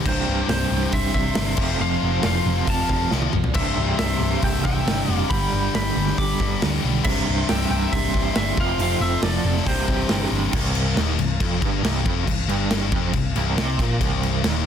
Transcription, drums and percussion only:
0.06 kick, crash
0.49 snare, open hi-hat
0.92 kick, open hi-hat
1.14 kick
1.35 snare, open hi-hat
1.57 kick, crash
2.23 snare, open hi-hat
2.67 kick, open hi-hat
2.89 kick, snare
3.11 snare
3.22 high tom
3.33 mid tom
3.44 floor tom
3.54 kick, crash
3.99 snare, open hi-hat
4.42 kick, open hi-hat
4.65 kick, snare
4.87 snare, open hi-hat
5.31 kick, open hi-hat
5.75 snare, open hi-hat
6.07 snare
6.18 kick, open hi-hat
6.40 kick, snare
6.62 snare, open hi-hat
7.04 kick, crash
7.49 snare, open hi-hat
7.93 kick, open hi-hat
8.14 kick
8.36 snare, open hi-hat
8.57 kick
8.79 open hi-hat
9.23 snare, open hi-hat
9.57 snare
9.66 kick, open hi-hat
9.88 kick
10.09 snare, open hi-hat
10.53 kick, crash
10.75 crash
10.97 snare, crash
11.19 crash
11.40 kick, crash
11.62 kick, crash
11.84 snare, crash
12.06 kick, crash
12.27 kick, crash
12.49 crash
12.71 snare, crash
12.92 kick, crash
13.13 kick, crash
13.36 crash
13.58 snare, crash
13.79 kick, crash
14.01 kick, crash
14.23 crash
14.44 snare, crash

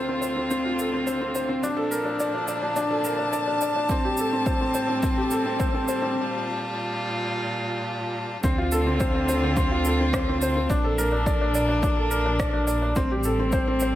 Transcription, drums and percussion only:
0.22 shaker
0.51 shaker
0.79 shaker
1.07 shaker
1.35 shaker
1.63 shaker
1.92 shaker
2.20 shaker
2.48 shaker
2.76 shaker
3.04 shaker
3.33 shaker
3.61 shaker
3.89 kick, shaker
4.17 shaker
4.46 kick, shaker
4.74 shaker
5.03 kick, shaker
5.31 shaker
5.60 kick, shaker
5.88 shaker
8.44 kick, shaker
8.72 shaker
9.00 kick, shaker
9.29 shaker
9.57 kick, shaker
9.85 shaker
10.13 kick, cross-stick, shaker
10.42 shaker
10.70 kick, shaker
10.99 shaker
11.26 kick, shaker
11.55 shaker
11.83 kick, shaker
12.11 shaker
12.40 kick, cross-stick, shaker
12.68 shaker
12.96 kick, shaker
13.24 shaker
13.52 kick, shaker
13.80 shaker

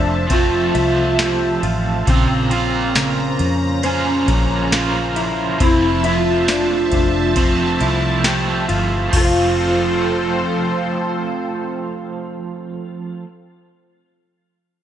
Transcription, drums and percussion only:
0.30 kick, ride
0.75 ride
1.19 snare, ride, tambourine
1.63 ride
2.07 kick, ride
2.51 ride
2.95 snare, ride, tambourine
3.39 ride
3.83 ride
4.28 kick, ride
4.72 snare, ride, tambourine
5.16 ride
5.60 kick, ride
6.04 ride
6.48 snare, ride, tambourine
6.92 kick, ride
7.36 kick, ride
7.81 ride
8.24 snare, ride, tambourine
8.69 ride
9.13 kick, crash

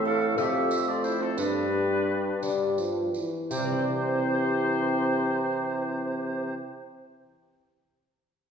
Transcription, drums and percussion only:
0.38 tambourine
0.71 tambourine
1.04 tambourine
1.38 tambourine
2.43 tambourine
2.78 tambourine
3.14 tambourine
3.51 tambourine

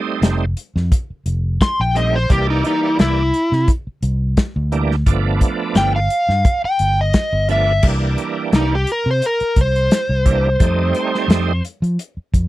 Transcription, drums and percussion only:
0.23 snare, closed hi-hat
0.57 closed hi-hat
0.77 snare
0.92 kick, closed hi-hat
1.26 closed hi-hat
1.61 kick, snare, closed hi-hat
1.96 closed hi-hat
2.30 kick, closed hi-hat
2.64 closed hi-hat
2.99 snare, closed hi-hat
3.34 closed hi-hat
3.53 snare
3.68 kick, closed hi-hat
4.03 closed hi-hat
4.37 kick, snare, closed hi-hat
4.72 closed hi-hat
4.91 snare
5.06 kick, closed hi-hat
5.41 kick, closed hi-hat
5.75 snare, closed hi-hat
6.10 closed hi-hat
6.30 snare
6.45 kick, closed hi-hat
6.79 closed hi-hat
7.13 kick, snare, closed hi-hat
7.49 closed hi-hat
7.83 kick, crash
8.18 closed hi-hat
8.52 snare, closed hi-hat
8.87 closed hi-hat
9.22 closed hi-hat
9.40 closed hi-hat
9.56 kick, closed hi-hat
9.76 closed hi-hat
9.91 snare, closed hi-hat
10.26 kick, closed hi-hat
10.60 kick, closed hi-hat
10.95 closed hi-hat
11.15 snare
11.30 snare, closed hi-hat
11.65 closed hi-hat
11.84 closed hi-hat
11.99 closed hi-hat
12.34 kick, closed hi-hat

